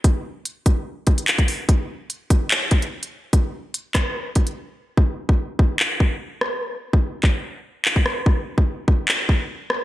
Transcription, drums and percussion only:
0.04 kick, closed hi-hat
0.45 closed hi-hat
0.66 kick, closed hi-hat
1.07 kick, closed hi-hat
1.18 closed hi-hat
1.28 clap, closed hi-hat
1.38 kick, closed hi-hat
1.48 closed hi-hat, open hi-hat
1.69 kick, closed hi-hat
2.10 closed hi-hat
2.30 kick, closed hi-hat
2.51 clap
2.71 kick, closed hi-hat
2.82 closed hi-hat
3.03 closed hi-hat
3.33 kick, closed hi-hat
3.74 closed hi-hat
3.95 kick, cross-stick, clap, closed hi-hat
4.35 kick, closed hi-hat
4.47 closed hi-hat
4.97 kick
5.29 kick
5.59 kick
5.80 clap
6.00 kick
6.41 cross-stick
6.93 kick
7.23 kick, clap
7.85 clap
7.96 kick
8.06 cross-stick
8.26 kick
8.58 kick
8.88 kick
9.08 clap
9.29 kick
9.70 cross-stick

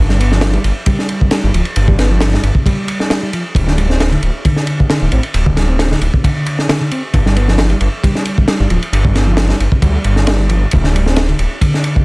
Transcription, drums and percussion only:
0.09 snare
0.20 ride
0.32 snare
0.41 snare, ride
0.53 ride
0.64 ride
0.86 kick, ride
0.99 snare
1.09 ride
1.21 kick
1.31 snare, ride
1.54 ride
1.65 ride
1.76 ride
1.88 kick
1.99 snare, ride
2.21 snare, ride
2.34 snare
2.43 ride
2.55 kick
2.66 kick, ride
2.88 ride
3.00 snare
3.10 snare, ride
3.33 ride
3.55 kick, ride
3.68 snare
3.78 ride
3.90 snare
4.00 snare, ride
4.12 ride
4.23 ride
4.45 kick, ride
4.56 snare
4.67 ride
4.80 kick
4.90 snare, ride
5.12 ride
5.23 ride
5.34 ride
5.46 kick
5.57 snare, ride
5.79 snare, ride
5.91 snare
6.01 ride
6.14 kick
6.24 kick, ride
6.46 ride
6.59 snare
6.69 snare, ride
6.91 ride
7.14 kick, ride
7.26 snare
7.36 ride
7.48 snare
7.58 snare, ride
7.70 ride
7.81 ride
8.04 kick, ride
8.15 snare
8.25 ride
8.38 kick
8.48 snare, ride
8.70 ride
8.83 ride
8.93 ride
9.05 kick
9.15 snare, ride
9.37 snare, ride
9.49 snare
9.60 ride
9.72 kick
9.82 kick, ride
10.04 ride
10.16 snare
10.27 snare, ride
10.49 ride
10.71 kick, ride
10.84 snare
10.96 ride
11.06 snare
11.16 snare, ride
11.29 ride
11.39 ride
11.61 kick, ride
11.74 snare
11.84 ride
11.96 kick

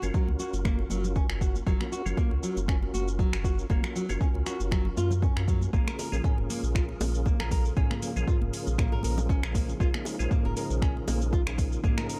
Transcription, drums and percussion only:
0.02 muted conga, low conga, shaker
0.14 kick, shaker
0.28 muted conga, high conga
0.40 shaker
0.54 muted conga, shaker
0.65 finger snap, kick, high conga, low conga, shaker
0.79 muted conga
0.90 high conga, shaker
1.04 low conga, shaker
1.16 kick, muted conga, high conga, shaker
1.30 finger snap
1.41 kick, muted conga, shaker
1.55 high conga, shaker
1.67 kick, muted conga, shaker
1.80 finger snap, high conga
1.93 shaker
2.06 muted conga, low conga, shaker
2.17 kick, shaker
2.31 muted conga, high conga
2.43 shaker
2.57 muted conga, shaker
2.68 finger snap, kick, shaker
2.83 muted conga
2.94 high conga, shaker
3.08 shaker
3.19 kick, muted conga, shaker
3.33 finger snap
3.44 kick, muted conga, high conga, low conga, shaker
3.59 shaker
3.70 kick, muted conga, shaker
3.83 finger snap, high conga, low conga
3.96 shaker
4.09 muted conga, low conga, shaker
4.21 kick, shaker
4.34 muted conga, high conga
4.46 finger snap, shaker
4.60 muted conga, shaker
4.71 finger snap, kick, high conga, low conga, shaker
4.85 muted conga
4.97 high conga, shaker
5.11 low conga, shaker
5.22 kick, muted conga, high conga, shaker
5.37 finger snap
5.48 kick, muted conga, shaker
5.61 high conga, shaker
5.73 kick, muted conga, shaker
5.88 finger snap, high conga
5.99 open hi-hat, high bongo, shaker
6.12 muted conga, low conga, shaker
6.24 kick, mid tom, shaker
6.38 muted conga, high conga
6.50 open hi-hat, shaker
6.63 muted conga, shaker
6.75 finger snap, kick, shaker
6.89 muted conga
7.01 open hi-hat, high bongo, high conga, shaker
7.15 shaker
7.25 kick, low bongo, muted conga, shaker
7.40 finger snap
7.51 kick, open hi-hat, muted conga, high conga, low conga, shaker
7.65 shaker
7.77 kick, mid tom, muted conga, shaker
7.91 finger snap, high conga, low conga
8.02 open hi-hat, shaker
8.17 muted conga, low conga, shaker
8.28 kick, mid tom, shaker
8.42 muted conga, high conga
8.54 open hi-hat, shaker
8.67 low bongo, muted conga, shaker
8.78 finger snap, kick, mid tom, high conga, low conga, shaker
8.92 muted conga
9.03 open hi-hat, high conga, shaker
9.17 high bongo, low bongo, low conga, shaker
9.29 kick, muted conga, high conga, shaker
9.43 finger snap
9.55 kick, open hi-hat, muted conga, shaker
9.69 high conga, shaker
9.80 kick, muted conga, shaker
9.94 finger snap, high conga
10.05 open hi-hat, high bongo, shaker
10.19 muted conga, low conga, shaker
10.31 kick, mid tom, shaker
10.45 muted conga, high conga
10.57 open hi-hat, shaker
10.70 muted conga, shaker
10.82 finger snap, kick, shaker
10.97 muted conga
11.08 open hi-hat, high bongo, high conga, shaker
11.22 shaker
11.33 kick, low bongo, muted conga, shaker
11.47 finger snap
11.58 kick, open hi-hat, muted conga, high conga, low conga, shaker
11.72 shaker
11.84 kick, mid tom, muted conga, shaker
11.98 finger snap, high conga, low conga
12.10 open hi-hat, shaker

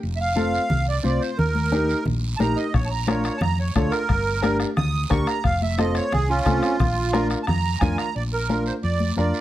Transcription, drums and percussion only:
0.03 long guiro
0.37 high conga, short guiro
0.55 short guiro
0.70 low conga, long guiro
1.04 high conga, short guiro
1.22 short guiro
1.39 low conga, long guiro
1.55 high conga
1.72 high conga, short guiro
1.89 short guiro
2.05 low conga, long guiro
2.40 high conga, short guiro
2.57 short guiro
2.74 bombo low, bombo rim, long guiro
3.07 bombo rim, high conga, short guiro
3.24 bombo rim, short guiro
3.41 bombo rim, low conga, long guiro
3.75 bombo low, bombo rim, high conga, short guiro
3.92 bombo rim, short guiro
4.09 bombo low, bombo rim, long guiro
4.43 bombo rim, high conga, short guiro
4.60 bombo rim, short guiro
4.77 bombo rim, low conga, long guiro
5.10 bombo low, bombo rim, high conga, short guiro
5.27 bombo rim, short guiro
5.44 bombo low, bombo rim, long guiro
5.62 high conga
5.78 bombo rim, high conga, short guiro
5.95 bombo rim, short guiro
6.12 bombo rim, low conga, long guiro
6.46 bombo low, bombo rim, high conga, short guiro
6.63 bombo rim, short guiro
6.80 bombo low, bombo rim, low conga, long guiro
7.13 bombo rim, high conga, short guiro
7.30 bombo rim, short guiro
7.47 bombo rim, low conga, long guiro
7.81 bombo low, bombo rim, high conga, low conga, short guiro
7.98 bombo rim, short guiro
8.16 long guiro
8.49 high conga, short guiro
8.66 short guiro
8.83 long guiro
9.00 high conga
9.16 high conga, short guiro
9.34 short guiro

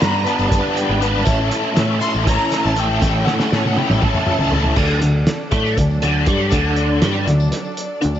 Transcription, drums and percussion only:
0.02 snare, closed hi-hat
0.26 closed hi-hat
0.39 tambourine
0.52 kick, closed hi-hat
0.64 tambourine
0.77 closed hi-hat
1.02 closed hi-hat
1.13 tambourine
1.25 kick, closed hi-hat, tambourine
1.51 closed hi-hat, tambourine
1.77 snare, closed hi-hat
2.02 closed hi-hat
2.14 tambourine
2.27 kick, closed hi-hat
2.41 tambourine
2.52 snare, closed hi-hat
2.76 closed hi-hat
2.91 tambourine
3.02 kick, closed hi-hat, tambourine
3.27 snare, tambourine
3.40 snare, tambourine
3.52 snare
3.65 high tom, tambourine
3.77 high tom
3.90 mid tom, tambourine
4.02 kick, mid tom, tambourine
4.15 mid tom
4.27 mid tom
4.39 floor tom
4.51 floor tom, tambourine
4.64 floor tom
4.76 kick, crash, tambourine
5.02 closed hi-hat, tambourine
5.27 snare, closed hi-hat
5.51 kick, closed hi-hat
5.66 tambourine
5.77 kick, closed hi-hat
5.90 tambourine
6.02 closed hi-hat
6.26 kick, closed hi-hat
6.40 tambourine
6.51 kick, closed hi-hat, tambourine
6.76 closed hi-hat, tambourine
7.02 snare, closed hi-hat
7.28 snare, closed hi-hat
7.40 tambourine
7.52 snare, closed hi-hat
7.64 tambourine
7.77 closed hi-hat
8.02 closed hi-hat
8.15 tambourine

